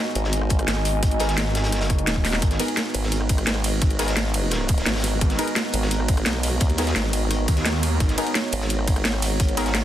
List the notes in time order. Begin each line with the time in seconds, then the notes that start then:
Already playing: G#3 B3 D#4 F#4 A#4 D#5 G#5
0.15 G#1, closed hi-hat
0.24 snare
0.33 closed hi-hat
0.42 cross-stick
0.50 kick, closed hi-hat
0.59 cross-stick, closed hi-hat
0.68 G#1, snare, closed hi-hat
0.77 cross-stick
0.85 closed hi-hat, open hi-hat
1.03 kick, closed hi-hat
1.11 closed hi-hat
1.20 B3 D#4 G#4 A#4, cross-stick, snare, closed hi-hat
1.29 snare, closed hi-hat
1.37 snare, closed hi-hat
1.46 snare
1.55 snare, closed hi-hat
1.64 G1, snare, closed hi-hat
1.72 cross-stick, snare, closed hi-hat
1.81 snare, closed hi-hat
1.90 F#1, kick, closed hi-hat
1.99 closed hi-hat
2.07 D#1, snare, closed hi-hat
2.16 kick
2.25 snare, closed hi-hat, open hi-hat
2.33 snare
2.42 G#1 B4, kick, closed hi-hat
2.50 snare, closed hi-hat
2.59 B3 D#4 G#4 A#4, closed hi-hat, ride
2.68 closed hi-hat
2.77 snare, closed hi-hat
2.94 G#1, closed hi-hat, ride
3.01 D#5, snare
3.12 closed hi-hat
3.21 cross-stick
3.29 kick, closed hi-hat, ride
3.38 cross-stick, closed hi-hat
3.47 G#1, snare, closed hi-hat
3.56 cross-stick
3.64 closed hi-hat, open hi-hat, ride
3.81 kick, closed hi-hat
3.90 closed hi-hat
3.99 B3 D#4 G#4 A#4, cross-stick, snare, closed hi-hat, ride
4.08 snare, closed hi-hat
4.17 snare, closed hi-hat
4.25 snare
4.34 closed hi-hat, ride
4.51 cross-stick, snare, closed hi-hat
4.68 kick, closed hi-hat, ride
4.78 snare, closed hi-hat
4.86 G#1, snare, closed hi-hat
4.95 snare, closed hi-hat
5.00 snare, closed hi-hat
5.04 closed hi-hat, open hi-hat, ride
5.21 G#1, kick, closed hi-hat
5.30 snare, closed hi-hat
5.39 B3 D#4 G#4 A#4, closed hi-hat, ride
5.47 closed hi-hat
5.56 snare, closed hi-hat
5.72 G#1, closed hi-hat, ride
5.82 snare
5.91 closed hi-hat
6.00 cross-stick
6.08 kick, closed hi-hat, ride
6.17 cross-stick, closed hi-hat
6.25 B1, snare, closed hi-hat
6.35 cross-stick
6.43 closed hi-hat, open hi-hat, ride
6.60 D#2, kick, closed hi-hat
6.70 closed hi-hat
6.78 B3 D#4 G#4 A#4, cross-stick, snare, closed hi-hat, ride
6.87 snare, closed hi-hat
6.95 G#1, snare, closed hi-hat
7.05 snare
7.13 closed hi-hat, ride
7.31 cross-stick, closed hi-hat
7.48 D#2, kick, closed hi-hat, ride
7.57 snare, closed hi-hat
7.65 snare, closed hi-hat
7.74 snare
7.83 cross-stick, closed hi-hat, open hi-hat, ride
8.00 G#1 C#5, kick, closed hi-hat
8.09 snare, closed hi-hat
8.18 B3 D#4 G#4 A#4, closed hi-hat, ride
8.27 closed hi-hat
8.34 snare, closed hi-hat
8.52 G#1, closed hi-hat, ride
8.59 F#5, snare
8.69 closed hi-hat
8.79 cross-stick
8.88 kick, closed hi-hat, ride
8.96 cross-stick, closed hi-hat
9.04 G#1, snare, closed hi-hat
9.14 cross-stick
9.22 closed hi-hat, open hi-hat, ride
9.40 kick, closed hi-hat
9.49 closed hi-hat
9.57 B3 D#4 G#4 A#4, cross-stick, snare, closed hi-hat, ride
9.66 snare, closed hi-hat
9.75 snare, closed hi-hat